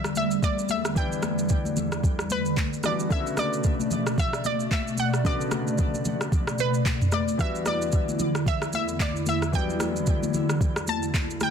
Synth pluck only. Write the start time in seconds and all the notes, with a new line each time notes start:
0.17 E5
0.44 D5
0.71 E5
0.97 G5
2.32 B4
2.86 D5
3.12 E5
3.39 D5
4.19 E5
4.46 D5
4.73 E5
5.00 F#5
5.26 D5
6.60 B4
7.14 D5
7.41 E5
7.67 D5
8.48 E5
8.75 E5
9.02 D5
9.29 E5
9.55 G5
10.89 A5
11.43 G5